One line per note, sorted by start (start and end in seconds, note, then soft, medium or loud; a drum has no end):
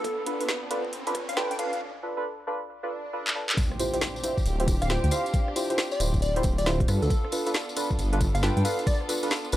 0.00 1.79 B3 medium
0.00 1.79 D4 medium
0.00 1.77 F4 medium
0.00 0.57 A4 loud
0.00 1.77 A4 medium
0.00 riser medium
0.04 kick loud
0.04 closed hi-hat medium
0.26 0.38 D4 medium
0.26 0.38 F4 medium
0.26 0.38 A4 medium
0.26 0.38 B4 medium
0.26 closed hi-hat loud
0.40 0.48 D4 medium
0.40 0.48 F4 medium
0.40 0.48 A4 medium
0.40 0.48 B4 medium
0.40 closed hi-hat medium
0.49 snare loud
0.70 0.84 D4 medium
0.70 0.84 F4 medium
0.70 0.84 A4 medium
0.70 0.84 B4 loud
0.70 closed hi-hat loud
0.85 kick medium
0.93 closed hi-hat medium
1.07 1.14 D4 loud
1.07 1.14 F4 loud
1.07 1.14 A4 medium
1.07 1.14 B4 loud
1.07 closed hi-hat medium
1.15 kick loud
1.15 cross-stick soft
1.15 closed hi-hat loud
1.29 1.35 F5 loud
1.29 closed hi-hat medium
1.37 1.57 D4 medium
1.37 1.57 F4 medium
1.37 1.57 A4 medium
1.37 1.57 B4 loud
1.37 1.46 G5 medium
1.37 snare loud
1.51 1.56 G5 medium
1.51 closed hi-hat medium
1.59 1.72 D4 medium
1.59 1.72 F4 medium
1.59 1.72 A4 medium
1.59 1.72 B4 loud
1.59 1.81 F5 medium
1.59 closed hi-hat loud
1.73 closed hi-hat soft
2.03 2.15 D4 medium
2.03 2.15 F4 medium
2.03 2.15 A4 medium
2.03 2.15 B4 medium
2.17 2.24 D4 medium
2.17 2.24 F4 medium
2.17 2.24 A4 medium
2.17 2.24 B4 medium
2.47 2.60 D4 medium
2.47 2.60 F4 medium
2.47 2.60 A4 medium
2.47 2.60 B4 loud
2.69 swell medium
2.83 2.91 D4 loud
2.83 2.91 F4 medium
2.83 2.90 A4 loud
2.83 2.91 B4 loud
3.13 3.33 D4 medium
3.13 3.33 F4 medium
3.13 3.33 A4 medium
3.13 3.33 B4 loud
3.27 clap medium
3.35 3.48 D4 medium
3.35 3.48 F4 medium
3.35 3.48 A4 medium
3.35 3.48 B4 medium
3.49 clap loud
3.57 6.85 C4 medium
3.57 6.85 D4 medium
3.57 9.57 F4 medium
3.57 6.85 G4 medium
3.57 kick loud
3.57 closed hi-hat medium
3.57 tambourine medium
3.57 impact medium
3.72 cross-stick soft
3.79 3.91 E4 medium
3.79 3.91 F4 medium
3.79 3.91 G4 medium
3.79 3.91 C5 medium
3.79 closed hi-hat loud
3.79 tambourine medium
3.94 4.01 E4 medium
3.94 4.01 F4 medium
3.94 4.01 G4 medium
3.94 4.01 C5 medium
3.94 closed hi-hat medium
3.94 tambourine soft
4.01 snare loud
4.01 tambourine medium
4.16 tambourine soft
4.23 4.37 E4 medium
4.23 4.37 F4 medium
4.23 4.37 G4 medium
4.23 4.37 C5 loud
4.23 closed hi-hat loud
4.23 tambourine loud
4.38 kick medium
4.38 tambourine soft
4.46 4.76 D1 loud
4.46 closed hi-hat medium
4.46 tambourine medium
4.60 4.67 E4 loud
4.60 4.67 F4 medium
4.60 4.67 G4 medium
4.60 4.67 C5 loud
4.60 closed hi-hat medium
4.68 kick loud
4.68 closed hi-hat loud
4.68 tambourine loud
4.82 4.97 D1 loud
4.82 4.88 F5 medium
4.82 cross-stick soft
4.82 closed hi-hat medium
4.82 tambourine soft
4.90 5.10 E4 medium
4.90 5.10 F4 medium
4.90 5.10 G4 medium
4.90 5.10 C5 loud
4.90 4.99 G5 medium
4.90 snare loud
4.90 closed hi-hat medium
4.90 tambourine medium
5.04 5.10 D2 medium
5.04 5.09 G5 medium
5.04 closed hi-hat medium
5.11 5.25 E4 medium
5.11 5.25 F4 medium
5.11 5.25 G4 medium
5.11 5.25 C5 medium
5.11 5.48 F5 medium
5.11 closed hi-hat loud
5.11 tambourine loud
5.26 closed hi-hat soft
5.26 tambourine soft
5.34 kick loud
5.34 closed hi-hat medium
5.34 tambourine medium
5.48 cross-stick soft
5.56 5.68 E4 medium
5.56 5.68 F4 medium
5.56 5.68 G4 medium
5.56 5.68 C5 medium
5.56 closed hi-hat loud
5.56 tambourine loud
5.70 5.77 E4 medium
5.70 5.77 F4 medium
5.70 5.77 G4 medium
5.70 5.77 C5 loud
5.70 closed hi-hat medium
5.70 tambourine soft
5.78 snare loud
5.78 tambourine medium
5.91 6.00 D5 medium
5.91 tambourine soft
6.00 6.41 D1 loud
6.00 6.13 E4 medium
6.00 6.13 F4 medium
6.00 6.13 G4 medium
6.00 6.13 C5 loud
6.00 closed hi-hat loud
6.00 tambourine loud
6.14 kick medium
6.14 tambourine soft
6.22 6.36 D5 medium
6.22 closed hi-hat medium
6.22 tambourine medium
6.36 6.43 E4 loud
6.36 6.43 F4 medium
6.36 6.43 G4 loud
6.36 6.43 C5 loud
6.36 closed hi-hat medium
6.43 6.85 D1 medium
6.43 kick loud
6.43 closed hi-hat loud
6.43 tambourine medium
6.58 6.66 D5 medium
6.58 closed hi-hat medium
6.58 tambourine soft
6.66 6.86 E4 medium
6.66 6.86 F4 medium
6.66 6.86 G4 medium
6.66 6.86 C5 loud
6.66 snare loud
6.66 tambourine medium
6.80 kick loud
6.80 closed hi-hat medium
6.88 6.99 G2 medium
6.88 9.57 B3 medium
6.88 7.01 D4 medium
6.88 9.57 D4 medium
6.88 7.01 F4 medium
6.88 7.01 A4 medium
6.88 9.57 A4 medium
6.88 7.01 B4 loud
6.88 cross-stick medium
6.88 closed hi-hat loud
6.88 tambourine medium
7.02 7.08 D2 medium
7.02 7.63 A4 loud
7.02 closed hi-hat soft
7.02 tambourine soft
7.10 kick loud
7.10 closed hi-hat medium
7.10 tambourine medium
7.25 cross-stick soft
7.32 7.44 D4 medium
7.32 7.44 F4 medium
7.32 7.44 A4 medium
7.32 7.44 B4 medium
7.32 closed hi-hat loud
7.32 tambourine medium
7.46 7.54 D4 medium
7.46 7.54 F4 medium
7.46 7.54 A4 medium
7.46 7.54 B4 medium
7.46 closed hi-hat medium
7.46 tambourine soft
7.54 snare loud
7.54 tambourine medium
7.69 tambourine soft
7.76 7.89 D4 medium
7.76 7.89 F4 medium
7.76 7.89 A4 medium
7.76 7.89 B4 loud
7.76 closed hi-hat loud
7.76 tambourine loud
7.91 kick medium
7.91 tambourine soft
7.99 8.29 G1 loud
7.99 closed hi-hat medium
7.99 tambourine medium
8.12 8.20 D4 loud
8.12 8.20 F4 medium
8.12 8.20 A4 loud
8.12 8.20 B4 loud
8.12 closed hi-hat medium
8.21 kick loud
8.21 closed hi-hat loud
8.21 tambourine loud
8.35 8.50 G1 loud
8.35 8.41 F5 loud
8.35 cross-stick soft
8.35 closed hi-hat medium
8.35 tambourine soft
8.42 8.63 D4 medium
8.42 8.63 F4 medium
8.42 8.63 A4 medium
8.42 8.63 B4 loud
8.42 8.52 G5 medium
8.42 snare loud
8.42 closed hi-hat medium
8.42 tambourine medium
8.57 8.63 G2 medium
8.57 8.62 G5 medium
8.57 closed hi-hat soft
8.65 8.78 D4 medium
8.65 8.78 F4 medium
8.65 8.78 A4 medium
8.65 8.78 B4 loud
8.65 8.86 F5 medium
8.65 closed hi-hat loud
8.65 tambourine loud
8.79 closed hi-hat soft
8.79 tambourine soft
8.87 9.01 D5 medium
8.87 kick loud
8.87 closed hi-hat medium
8.87 tambourine medium
9.01 cross-stick soft
9.09 9.21 D4 medium
9.09 9.21 F4 medium
9.09 9.21 A4 medium
9.09 9.21 B4 medium
9.09 closed hi-hat loud
9.09 tambourine loud
9.23 9.30 D4 medium
9.23 9.30 F4 medium
9.23 9.30 A4 medium
9.23 9.30 B4 medium
9.23 closed hi-hat medium
9.23 tambourine soft
9.31 snare loud
9.31 tambourine medium
9.44 tambourine soft
9.52 9.57 G1 loud
9.52 9.57 D4 medium
9.52 9.57 F4 medium
9.52 9.57 A4 medium
9.52 9.57 B4 loud
9.52 9.57 B4 medium
9.52 closed hi-hat loud
9.52 tambourine medium